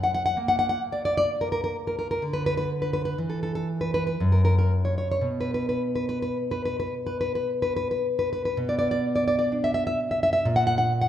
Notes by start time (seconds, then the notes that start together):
Already playing: F#2
0.04 F#5
0.14 F#5
0.26 F#5
0.37 A#3
0.48 F#5
0.59 F#5
0.69 F#5
0.92 D5
1.05 D5
1.18 D5
1.41 A#4
1.52 A#4
1.64 A#4
1.87 A#4
1.99 A#4
2.11 A#4
2.22 D3
2.33 B4
2.46 B4
2.57 B4
2.82 B4
2.93 B4
3.05 B4
3.18 E3
3.30 A4
3.43 A4
3.55 A4
3.81 B4
3.94 B4
4.07 B4
4.20 F#2
4.32 A#4
4.45 A#4
4.59 A#4
4.85 C#5
4.98 C#5
5.12 C#5
5.21 B2
5.41 B4
5.54 B4
5.69 B4
5.96 B4
6.09 B4
6.22 B4
6.51 B4
6.65 B4
6.80 B4
7.07 B4
7.21 B4
7.35 B4
7.62 B4
7.77 B4
7.91 B4
8.19 B4
8.33 B4
8.45 B4
8.57 B2
8.69 D5
8.79 D5
8.91 D5
9.16 D5
9.28 D5
9.39 D5
9.52 D4
9.64 E5
9.74 E5
9.87 E5
10.11 E5
10.23 E5
10.33 E5
10.45 A#2
10.56 F#5
10.67 F#5
10.78 F#5
11.02 F#5